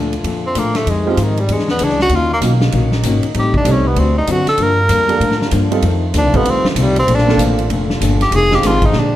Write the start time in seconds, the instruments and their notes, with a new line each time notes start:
Already playing: upright bass D2, hollow-body jazz guitar A#2 F3 A3 D4, trombone section D3 A3 D4 F4
0.13 ride
0.24 upright bass F2, hollow-body jazz guitar A#2 F3 A3 D4, ride
0.46 tenor saxophone C4
0.55 upright bass A2, hollow-body jazz guitar A#2 F3 A3 D4, tenor saxophone A#3, hi-hat pedal, ride
0.75 tenor saxophone A3, snare, ride
0.85 hollow-body jazz guitar F2 D#3 G#3, upright bass F2, trombone section C3 F3 G#3 D#4, ride
0.90 tenor saxophone G#3, hollow-body jazz guitar C4
1.06 tenor saxophone F3, upright piano G#3 C4 D#4 F4 G4
1.17 hollow-body jazz guitar F2 D#3 G#3 C4, upright bass G#2, hi-hat pedal, ride
1.23 tenor saxophone D#3
1.37 tenor saxophone G3, ride
1.48 upright bass E2, hollow-body jazz guitar E3 D4 G#4, trombone section F#3 C#4 D4, ride
1.52 tenor saxophone G#3, hollow-body jazz guitar C#5
1.59 snare
1.68 tenor saxophone B3, snare
1.79 upright bass C#2, hollow-body jazz guitar E3 D4 G#4 C#5, hi-hat pedal, ride
1.84 tenor saxophone D4
1.89 snare
2.00 tenor saxophone F#4, snare
2.09 upright bass D#2, hollow-body jazz guitar D#3 A#3 C#4, trombone section A#3 D#4, ride
2.14 tenor saxophone F4, hollow-body jazz guitar F#4
2.33 tenor saxophone A#3
2.41 upright bass B1, hollow-body jazz guitar D#3 A#3 C#4 F#4, upright piano F#3 A#3 C#4 D#4 F4, hi-hat pedal, ride
2.61 snare
2.72 upright bass A#1, hollow-body jazz guitar D#3 A#3 C#4 F#4, ride
2.92 snare
3.03 upright bass G#1, hollow-body jazz guitar D#3 A#3 C#4 F#4, hi-hat pedal, ride
3.23 muted upright bass stroke, ride
3.33 upright bass A1, hollow-body jazz guitar A2 G3, trombone section C3 G3 A3, ride
3.37 hollow-body jazz guitar C4 D#4, tenor saxophone G4
3.54 tenor saxophone D4, kick
3.64 upright bass C2, hollow-body jazz guitar A2 G3 C4 D#4, upright piano G3 A3 C4 D#4 G4, hi-hat pedal, ride
3.71 tenor saxophone C#4
3.88 tenor saxophone B3
3.95 upright bass D2, hollow-body jazz guitar D3 A3 C4, trombone section F#3 A3 D4, ride
3.99 tenor saxophone C4, hollow-body jazz guitar F#4
4.18 tenor saxophone D#4
4.27 upright bass F#2, hollow-body jazz guitar D3 A3 C4 F#4, tenor saxophone F#4, hi-hat pedal, ride
4.47 tenor saxophone A4, muted upright bass stroke, snare, ride
4.58 upright bass G2, hollow-body jazz guitar G2 F3 A#3 D4, trombone section D3 G3 F4 A#4, ride
4.63 tenor saxophone A#4
4.89 upright bass F2, hollow-body jazz guitar G2 F3 A#3 D4, hi-hat pedal, ride
5.08 upright piano G3 A#3 D4 F4 A4, ride
5.20 hollow-body jazz guitar G2 F3 A#3 D4, upright bass A2, ride
5.31 snare
5.41 snare
5.51 hollow-body jazz guitar G2 F3 A#3 D4, upright bass G2, hi-hat pedal, ride
5.71 upright piano G3 C4 D#4 F4 A4, ride
5.81 upright bass F2, hollow-body jazz guitar F2 D#3 A3 C4, trombone section D#3 A3 C4, ride
6.14 upright bass D#2, hollow-body jazz guitar F2 D#3 A3 C4, snare, hi-hat pedal, ride
6.18 tenor saxophone D4
6.23 upright bass C2
6.34 upright bass A1, upright piano G3 C4 D#4 F4 A4, tenor saxophone B3, kick, ride
6.43 upright bass D2, hollow-body jazz guitar F2, ride
6.47 hollow-body jazz guitar D#3 A3 C4, tenor saxophone C4
6.63 muted upright bass stroke, snare
6.70 tenor saxophone D#3
6.75 upright bass C2, hollow-body jazz guitar F2 D#3 A3 C4, hi-hat pedal, ride
6.81 tenor saxophone G3
6.96 tenor saxophone C4, ride
7.06 upright bass A#1, hollow-body jazz guitar A#2 F3 A3 D4, trombone section D3 A#3 A4, ride
7.15 tenor saxophone D4, snare
7.27 upright piano A#3 C4 D4 F4 A4, snare
7.37 upright bass A1, hollow-body jazz guitar A#2 F3 A3 D4, hi-hat pedal, ride
7.58 ride
7.70 upright bass F1, hollow-body jazz guitar A#2 F3 A3 D4, ride
7.90 snare
8.01 upright bass G1, hollow-body jazz guitar A#2 F3 A3 D4, hi-hat pedal, ride
8.21 tenor saxophone G4, snare, ride
8.31 upright bass F1, hollow-body jazz guitar F2 D#3 G#3, trombone section D#3 G#3 C4, ride
8.36 hollow-body jazz guitar C4, tenor saxophone G#4
8.51 upright piano G#3 C4 D#4 F4 G4, tenor saxophone G4, snare
8.62 upright bass G#1, hollow-body jazz guitar F2 D#3 G#3 C4, snare, hi-hat pedal, ride
8.67 tenor saxophone F4
8.82 tenor saxophone D#4, kick, ride
8.92 upright bass A#1, hollow-body jazz guitar A#2 G#3 D4 G4, trombone section D3 G4, snare
8.99 tenor saxophone D4